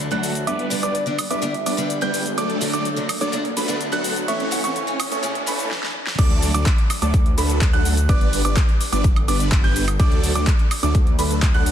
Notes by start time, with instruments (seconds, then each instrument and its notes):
Already playing: riser
0.00 shaker
0.11 detuned saw bass D2, steel-string acoustic guitar D3 F#3 A3 D4, supersaw synth F#3 A3 D4 A4 F#5, grand piano F#6, closed hi-hat
0.23 open hi-hat, shaker
0.35 closed hi-hat, shaker
0.47 detuned saw bass G1, supersaw synth G3 B3 D4 B4 D5, soft synth lead E5, grand piano D6, closed hi-hat, shaker
0.59 closed hi-hat
0.70 steel-string acoustic guitar D3 G3 B3 D4, open hi-hat, shaker
0.83 detuned saw bass G1, supersaw synth G3 B3 D4 B4 D5, soft synth lead D5, grand piano D6, closed hi-hat, shaker
0.95 closed hi-hat, shaker
1.06 steel-string acoustic guitar D3 G3 B3 D4, closed hi-hat
1.19 open hi-hat, high woodblock, shaker
1.30 detuned saw bass G1, supersaw synth G3 B3 D4 B4 D5, soft synth lead E5, grand piano D6, closed hi-hat, shaker
1.42 steel-string acoustic guitar D3 G3 B3 D4, closed hi-hat, shaker
1.54 closed hi-hat
1.66 detuned saw bass G1, supersaw synth G3 B3 D4 B4 D5, grand piano D6, open hi-hat, shaker
1.77 steel-string acoustic guitar D3 G3 B3 D4, closed hi-hat, shaker
1.90 closed hi-hat, shaker
2.01 detuned saw bass G1, steel-string acoustic guitar D3 G3 B3 D4, supersaw synth G3 B3 D4 B4 G5, grand piano G6, closed hi-hat
2.14 open hi-hat, shaker
2.26 closed hi-hat, shaker
2.38 detuned saw bass D2, supersaw synth F#3 A3 D4 A4 D5, grand piano D6, closed hi-hat, shaker
2.50 closed hi-hat
2.61 steel-string acoustic guitar D3 F#3 A3 D4, open hi-hat, shaker
2.73 detuned saw bass D2, supersaw synth F#3 A3 D4 A4 D5, grand piano D6, closed hi-hat, shaker
2.85 closed hi-hat, shaker
2.96 steel-string acoustic guitar D3 F#3 A3 D4, closed hi-hat
3.09 open hi-hat, high woodblock, shaker
3.21 detuned saw bass D2, supersaw synth F#3 A3 D4 A4 D5, soft synth lead D5, grand piano D6, closed hi-hat, shaker
3.32 steel-string acoustic guitar D3 F#3 A3 D4, closed hi-hat, shaker
3.45 closed hi-hat
3.57 detuned saw bass D2, supersaw synth F#3 A3 D4 A4 B4, grand piano B5, open hi-hat, shaker
3.68 steel-string acoustic guitar D3 F#3 A3 D4, closed hi-hat, shaker
3.81 closed hi-hat, shaker
3.92 detuned saw bass D2, steel-string acoustic guitar D3 F#3 A3 D4, supersaw synth F#3 A3 D4 A4 F#5, grand piano F#6, closed hi-hat
4.04 open hi-hat, shaker
4.16 closed hi-hat, shaker
4.28 detuned saw bass A1, supersaw synth E3 A3 C#4 A4 C#5, soft synth lead E5, grand piano C#6, closed hi-hat, shaker
4.40 closed hi-hat
4.51 steel-string acoustic guitar C#3 E3 A3 C#4, soft synth lead F#5, open hi-hat, shaker
4.64 detuned saw bass A1, supersaw synth E3 A3 C#4 A4 C#5, soft synth lead F#5, grand piano C#6, closed hi-hat, shaker
4.76 closed hi-hat, shaker
4.87 steel-string acoustic guitar C#3 E3 A3 C#4, closed hi-hat
5.00 open hi-hat, high woodblock, shaker
5.11 detuned saw bass A1, supersaw synth E3 A3 C#4 A4 C#5, grand piano C#6, closed hi-hat, shaker
5.23 steel-string acoustic guitar C#3 E3 A3 C#4, closed hi-hat, shaker
5.35 closed hi-hat
5.46 detuned saw bass A1, steel-string acoustic guitar C#3 E3 A3 C#4, supersaw synth E3 A3 C#4 A4 B4, grand piano B5, open hi-hat, shaker
5.59 closed hi-hat, shaker
5.71 snare
5.83 snare
6.07 snare
6.19 detuned saw bass D2, supersaw synth F#3 A3 D4 A4 D5, grand piano D6, kick, closed hi-hat, crash, shaker
6.31 closed hi-hat
6.42 open hi-hat, shaker
6.54 detuned saw bass D2, supersaw synth F#3 A3 D4 A4 D5, grand piano D6, closed hi-hat, shaker
6.66 kick, clap, closed hi-hat, shaker
6.78 closed hi-hat
6.90 open hi-hat, high woodblock, shaker
7.02 detuned saw bass D2, supersaw synth F#3 A3 D4 A4 D5, grand piano D6, closed hi-hat, shaker
7.14 kick, closed hi-hat, shaker
7.26 closed hi-hat
7.38 detuned saw bass D2, supersaw synth F#3 A3 D4 A4 B4, grand piano B5, open hi-hat, shaker
7.50 closed hi-hat, shaker
7.61 kick, clap, closed hi-hat, shaker
7.73 detuned saw bass D2, supersaw synth F#3 A3 D4 A4 F#5, grand piano F#6, closed hi-hat
7.85 open hi-hat, shaker
7.97 closed hi-hat, shaker
8.09 detuned saw bass G1, supersaw synth G3 B3 D4 B4 D5, grand piano D6, kick, closed hi-hat, shaker
8.21 closed hi-hat
8.33 open hi-hat, shaker
8.45 detuned saw bass G1, supersaw synth G3 B3 D4 B4 D5, grand piano D6, closed hi-hat, shaker
8.57 kick, clap, closed hi-hat, shaker
8.69 closed hi-hat
8.81 open hi-hat, shaker
8.92 detuned saw bass G1, supersaw synth G3 B3 D4 B4 D5, grand piano D6, closed hi-hat, shaker
9.04 kick, closed hi-hat, shaker
9.16 closed hi-hat, high woodblock
9.28 detuned saw bass G1, supersaw synth G3 B3 D4 B4 D5, grand piano D6, open hi-hat, shaker
9.40 closed hi-hat, shaker
9.52 kick, clap, closed hi-hat, shaker
9.64 detuned saw bass G1, supersaw synth G3 B3 D4 B4 G5, grand piano G6, closed hi-hat
9.76 open hi-hat, shaker
9.88 closed hi-hat, high woodblock, shaker
10.00 detuned saw bass D2, supersaw synth F#3 A3 D4 A4 D5, grand piano D6, kick, closed hi-hat, shaker
10.12 closed hi-hat
10.24 open hi-hat, shaker
10.35 detuned saw bass D2, supersaw synth F#3 A3 D4 A4 D5, grand piano D6, closed hi-hat, shaker
10.47 kick, clap, closed hi-hat, shaker
10.59 closed hi-hat
10.71 open hi-hat, high woodblock, shaker
10.83 detuned saw bass D2, supersaw synth F#3 A3 D4 A4 D5, grand piano D6, closed hi-hat, shaker
10.95 kick, closed hi-hat, shaker
11.07 closed hi-hat
11.19 detuned saw bass D2, supersaw synth F#3 A3 D4 A4 B4, grand piano B5, open hi-hat, shaker
11.31 closed hi-hat, shaker
11.42 kick, clap, closed hi-hat, shaker
11.54 detuned saw bass D2, supersaw synth F#3 A3 D4 A4 F#5, grand piano F#6, closed hi-hat
11.66 open hi-hat, shaker